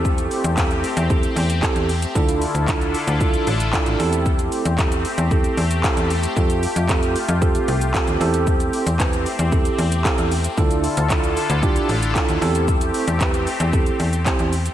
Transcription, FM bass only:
\new Staff \with { instrumentName = "FM bass" } { \clef bass \time 4/4 \key a \minor \tempo 4 = 114 e,8. e,4 e,8. e,8. e,8. | d,8. d,4 d,8. a,,8. a,,16 e,8~ | e,8. e,4 e,8. e,8. e,8. | f,8. f,4 f,8. c,8. dis,16 e,8~ |
e,8. e,4 e,8. e,8. e,8. | d,8. d,4 d,8. a,,8. dis,16 e,8~ | e,8. e,4 e,8. e,8. e,8. | }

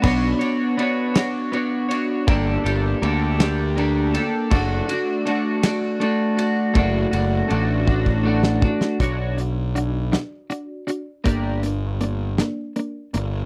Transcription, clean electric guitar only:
\new Staff \with { instrumentName = "Clean electric guitar" } { \time 6/8 \key b \minor \tempo 4. = 53 <b d' fis' cis''>8 <d' fis' cis''>8 <b d' fis' cis''>8 <d' fis' cis''>8 <b d' fis' cis''>8 <d' fis' cis''>8 | <bes d' g' a'>8 <d' g' a'>8 <bes d' g' a'>8 <d' g' a'>8 <bes d' g' a'>8 <d' g' a'>8 | <a d' fis'>8 <d' fis'>8 <a d' fis'>8 <d' fis'>8 <a d' fis'>8 <d' fis'>8 | <a d' fis'>8 <d' fis'>8 <a d' fis'>8 <d' fis'>8 <a d' fis'>8 <d' fis'>8 |
<d' fis' cis''>8 <d' fis'>8 <d' fis'>8 <d' fis'>8 <d' fis'>8 <d' fis'>8 | <bes d' g'>8 <bes d'>8 <bes d'>8 <bes d'>8 <bes d'>8 <bes d'>8 | }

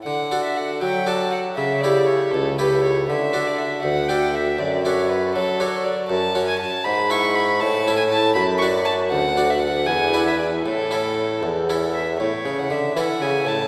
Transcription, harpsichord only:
<<
  \new Staff \with { instrumentName = "Harpsichord" } { \time 6/8 \key d \major \tempo 4. = 79 r8 <d' fis' a'>4. <d' fis' a'>4 | r8 <e' g' a'>4. <e' g' a'>4 | r8 <d' fis' a'>4. <d' fis' a'>4 | r8 <d' fis' a'>4. <d' fis' a'>4 |
\key a \major r8 <cis' fis' cis''>4 r8 <b e' e''>4 | r8 <cis' e' e''>4 r8 <d' fis' d''>4 | r8 <d' fis' d''>4 r8 <d' e' b'>4 | r8 <cis' e' a'>4. <cis' e' a'>4 |
r4. <cis' e' a'>4. | }
  \new Staff \with { instrumentName = "Harpsichord" } { \clef bass \time 6/8 \key d \major d4. fis4. | cis4. cis,4. | d4. d,4. | fis,4. fis4. |
\key a \major fis,4 r8 gis,4. | a,4. fis,4. | d,4. e,4. | a,4. e,4. |
a,8 cis8 d8 e8 cis8 a,8 | }
>>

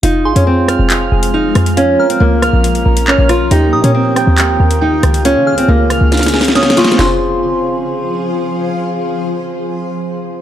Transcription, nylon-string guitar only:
\new Staff \with { instrumentName = "Nylon-string guitar" } { \time 4/4 \key f \minor \tempo 4 = 138 ees'8. des'16 c'2 ees'8 r8 | des'8. c'16 bes2 des'8 f'8 | ees'8. des'16 c'2 ees'8 r8 | des'8. c'16 bes2 des'8 f'8 |
f'2. r4 | r1 | }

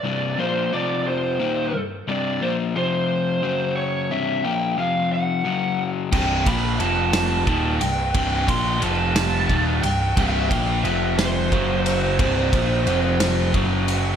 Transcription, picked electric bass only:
\new Staff \with { instrumentName = "Picked electric bass" } { \clef bass \time 6/8 \key f \lydian \tempo 4. = 59 r2. | r2. | r2. | c,,8 bes,,8 f,,4 ees,,8 c,,8 |
c,,8 bes,,8 f,,4 ees,,8 c,,8 | c,,8 bes,,8 f,,4 fis,,4 | c,,8 bes,,8 f,,4 fis,,4 | }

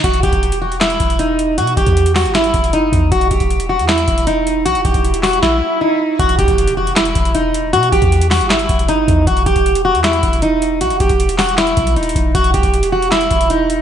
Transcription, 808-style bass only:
\new Staff \with { instrumentName = "808-style bass" } { \clef bass \time 4/4 \key e \minor \tempo 4 = 156 e,,8 dis,,16 e,,4.~ e,,16 e,,4. | b,8 e,,16 e,4 g,,8. e,,8 fis,,8 e,8 | e,,8 e,,16 e,,4 e,8. e,,4. | b,,16 e,,16 e,,16 e,,4~ e,,16 r2 |
e,,8 dis,,16 e,,4.~ e,,16 e,,4. | b,8 e,,16 e,4 g,,8. e,,8 fis,,8 e,8 | e,,8 e,,16 e,,4 e,8. e,,4. | b,,16 e,,16 e,,16 e,,4.~ e,,16 b,,8 dis,,8 e,,8 |
e,,8 dis,,16 e,,4.~ e,,16 e,,4. | }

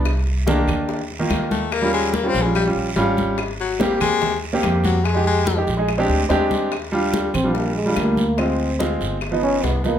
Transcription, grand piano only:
\new Staff \with { instrumentName = "Grand piano" } { \time 4/4 \key ees \major \tempo 4 = 144 r4 <ees bes d'>4~ <ees bes d'>16 r8 <ees bes f'>4 r16 | r16 <g des' f'>8. r16 <g des' f'>16 r16 <g des' f'>16 r16 <g des' f'>8 r16 <g des' f'>4 | r4 <bes c' g'>4~ <bes c' g'>16 r8 <bes c' g'>4 r16 | r16 <aes ees' g'>8. r16 <aes ees' g'>16 r16 <aes ees' aes'>16 r16 <aes c' d' g'>8 r16 <aes c' d' g'>4 |
r8 <g d' f'>4 r16 <g d' f'>8. r16 <g d' f'>8. r8 | <aes c' f'>8. r16 <aes c' f'>4 r16 <f b dis'>8. r8 <f b dis'>8 | }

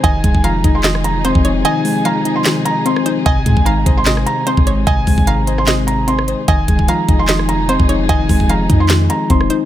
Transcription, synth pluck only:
\new Staff \with { instrumentName = "Synth pluck" } { \time 4/4 \key f \minor \tempo 4 = 149 ees''4 f''4 ees''4 c''8 des''8 | ees''4 f''2~ f''8 c''8 | ees''4 f''4 ees''4 c''8 des''8 | ees''4 f''4 ees''4 r4 |
ees''4 f''4 ees''4 c''8 des''8 | ees''4 f''2~ f''8 c''8 | }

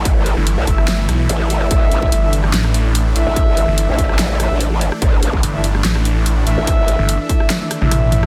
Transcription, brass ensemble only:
\new Staff \with { instrumentName = "Brass ensemble" } { \time 4/4 \key c \major \tempo 4 = 145 r4 r16 <a e' e''>4~ <a e' e''>16 r16 <a e' e''>4~ <a e' e''>16~ | <a e' e''>4~ <a e' e''>16 <a e' e''>16 r2 <a e' e''>8~ | <a e' e''>4~ <a e' e''>16 <a e' e''>4~ <a e' e''>16 <a e' e''>16 r4 r16 | r4 r16 <a e' e''>16 r2 <a e' e''>8~ |
<a e' e''>4~ <a e' e''>16 <a e' e''>4~ <a e' e''>16 r16 <a e' e''>4~ <a e' e''>16 | }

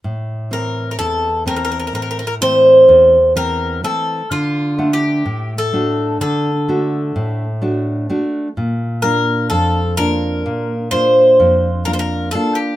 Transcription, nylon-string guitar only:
\new Staff \with { instrumentName = "Nylon-string guitar" } { \time 9/8 \key a \phrygian \tempo 4. = 42 a,8 <e c'>8 e,8 <e a c'>8 a,8 <e a c'>8 e,8 <e c'>8 <e a c'>8 | d8 <a d' fis''>8 a,8 <a d' fis'>8 d8 <a d' fis'>8 a,8 <a d' fis'>8 <a d' fis'>8 | bes,8 <bes d' f'>8 f,8 <bes d' f'>8 bes,8 <bes d' f'>8 f,8 <bes d' f'>8 <bes d' f'>8 | }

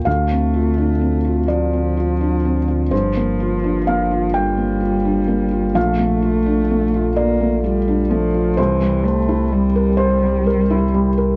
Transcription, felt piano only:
\new Staff \with { instrumentName = "Felt piano" } { \time 6/8 \key d \minor \tempo 4. = 42 << { f''4. d''4. | c''4 f''8 g''4. | f''4. d''4. | c''4. c''4. | } \\ { d,16 c'16 f'16 d'16 c'16 f'8 c'16 f'16 d'16 c'16 f'16 | g,16 bes16 f'16 d'16 bes16 f'8 bes16 f'16 d'16 bes16 f'16 | bes,,16 a16 f'16 d'16 a16 f'8 a16 f'16 d'16 a16 f'16 | c,16 g16 c''16 e'16 g16 bes'8 g16 bes'16 e'16 g16 bes'16 | } >> }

